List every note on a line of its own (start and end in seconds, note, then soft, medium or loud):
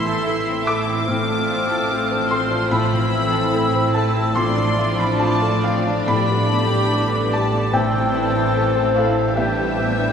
0.00 1.04 A1 medium
0.00 1.04 A2 medium
0.00 1.07 A2 medium
0.00 1.10 E3 soft
0.00 1.11 E3 soft
0.00 0.17 A3 soft
0.00 4.32 A3 medium
0.00 0.25 E4 soft
0.00 1.08 E4 medium
0.00 1.10 E4 medium
0.00 1.05 E5 medium
0.00 0.63 C6 medium
0.00 0.64 C6 medium
0.00 1.10 E6 medium
0.06 0.38 E4 soft
0.06 0.26 A4 medium
0.26 0.79 E4 soft
0.26 0.47 E4 medium
0.26 0.59 A4 soft
0.47 0.67 C4 medium
0.47 0.79 E4 soft
0.53 1.62 A3 soft
0.66 0.88 A3 medium
0.66 1.00 A4 soft
0.66 2.30 D6 medium
0.66 2.26 D6 medium
0.80 1.11 E4 medium
0.88 1.07 C4 medium
0.88 1.08 E4 soft
1.08 6.04 A1 medium
1.08 6.04 A2 medium
1.08 2.69 A2 medium
1.08 2.67 A2 medium
1.08 3.49 F3 medium
1.08 2.70 C4 medium
1.08 1.27 C4 soft
1.08 4.36 C5 medium
1.08 2.70 F6 medium
1.28 1.61 A3 soft
1.28 1.49 D4 medium
1.36 1.89 F4 soft
1.50 1.82 C4 soft
1.50 1.70 F4 medium
1.63 5.48 A3 soft
1.70 2.03 F4 soft
1.70 1.90 A4 soft
1.90 2.10 F4 medium
1.90 2.43 F4 soft
1.90 2.23 A4 soft
2.11 2.31 D4 medium
2.11 2.43 C5 medium
2.17 3.79 C4 soft
2.30 2.51 C4 medium
2.30 2.63 A4 soft
2.30 2.71 C6 medium
2.30 2.68 C6 medium
2.44 2.74 F4 soft
2.51 2.71 D4 medium
2.51 2.72 F4 soft
2.70 4.34 A2 medium
2.70 4.32 A2 medium
2.70 2.90 A3 medium
2.70 4.38 C4 medium
2.70 3.91 B5 medium
2.70 3.90 B5 medium
2.70 4.37 E6 medium
2.92 3.24 E3 soft
2.92 3.12 C4 medium
2.98 3.52 E4 soft
3.11 3.45 C4 soft
3.11 3.32 E4 medium
3.25 4.39 E3 soft
3.33 3.65 E4 soft
3.33 3.53 A4 medium
3.53 4.36 E4 medium
3.53 4.07 E4 soft
3.53 3.74 E4 medium
3.53 3.86 A4 soft
3.73 3.94 C4 soft
3.73 4.07 C5 soft
3.81 6.12 C4 soft
3.93 4.15 A3 medium
3.93 4.28 A4 medium
3.93 4.35 A5 medium
3.93 4.33 A5 medium
4.08 4.39 E4 soft
4.15 4.34 C4 medium
4.15 4.37 E4 soft
4.35 6.08 A2 medium
4.35 6.05 A2 medium
4.35 6.05 F3 medium
4.35 4.55 C4 medium
4.35 7.74 D4 medium
4.35 5.20 F4 medium
4.35 7.69 D5 medium
4.35 4.94 C6 medium
4.35 4.98 C6 medium
4.35 5.19 D6 medium
4.57 4.91 F3 soft
4.57 4.78 D4 medium
4.64 5.18 D4 soft
4.78 5.12 A3 soft
4.78 4.99 F4 medium
4.92 6.12 F3 soft
4.98 5.33 D4 soft
4.98 5.20 A4 medium
4.98 5.19 B5 medium
5.20 5.79 D4 soft
5.20 5.55 F4 soft
5.20 5.42 F4 soft
5.20 5.78 F4 medium
5.20 5.60 A5 medium
5.20 5.63 A5 medium
5.20 5.78 D6 medium
5.41 5.64 D4 medium
5.41 5.77 A4 medium
5.49 6.12 A3 soft
5.63 5.86 C4 medium
5.63 5.99 F4 soft
5.63 6.08 F5 medium
5.63 6.05 F5 medium
5.80 6.36 D4 soft
5.86 6.08 D4 soft
5.86 6.08 D4 medium
6.07 10.12 A1 medium
6.07 7.69 A2 medium
6.07 10.12 A2 medium
6.07 7.72 A2 medium
6.07 7.73 D3 medium
6.07 6.28 G3 medium
6.07 7.69 G4 medium
6.07 7.33 B5 medium
6.07 7.29 B5 medium
6.07 7.76 D6 medium
6.28 6.63 G3 soft
6.28 6.50 B3 medium
6.37 6.91 D4 medium
6.49 6.83 B3 soft
6.49 6.70 D4 medium
6.64 7.76 G3 soft
6.69 7.04 D4 soft
6.69 6.91 G4 medium
6.90 7.12 D4 medium
6.90 7.45 D4 soft
6.90 7.25 G4 medium
7.12 7.32 B3 medium
7.12 7.45 B4 soft
7.20 7.77 B3 soft
7.32 7.53 G3 soft
7.32 7.65 G4 soft
7.32 7.70 A5 medium
7.32 7.73 A5 medium
7.46 7.77 D4 soft
7.52 7.73 B3 medium
7.52 7.73 D4 soft
7.72 9.36 A2 medium
7.72 9.33 A2 medium
7.72 9.34 E3 medium
7.72 7.91 A3 medium
7.72 9.34 C4 medium
7.72 9.36 A4 medium
7.72 9.33 C5 medium
7.72 8.92 G5 medium
7.72 8.96 G5 medium
7.72 9.37 E6 medium
7.91 8.26 E3 soft
7.91 8.12 C4 medium
8.00 9.09 E4 soft
8.12 8.47 C4 soft
8.12 8.34 E4 medium
8.28 9.40 E3 soft
8.28 8.54 C4 medium
8.35 8.68 E4 soft
8.54 8.75 A3 soft
8.54 8.88 A4 soft
8.75 8.96 C4 soft
8.75 9.09 C5 medium
8.82 9.40 C4 soft
8.95 9.16 E4 medium
8.95 9.29 A4 soft
8.95 9.34 F5 medium
8.95 9.36 F5 medium
9.10 9.40 E4 soft
9.15 9.36 C4 soft
9.15 9.38 E4 soft
9.34 10.12 A2 medium
9.34 10.12 A2 soft
9.34 9.54 G3 medium
9.34 10.12 G3 medium
9.34 10.12 D4 medium
9.34 10.12 G4 medium
9.34 10.12 B4 medium
9.34 10.12 E5 medium
9.34 10.12 G6 medium
9.56 9.90 G3 soft
9.56 9.77 B3 soft
9.64 10.12 D4 soft
9.76 10.11 B3 soft
9.76 9.97 D4 soft
9.90 10.12 G3 soft
9.96 10.12 B3 soft
9.96 10.12 D4 soft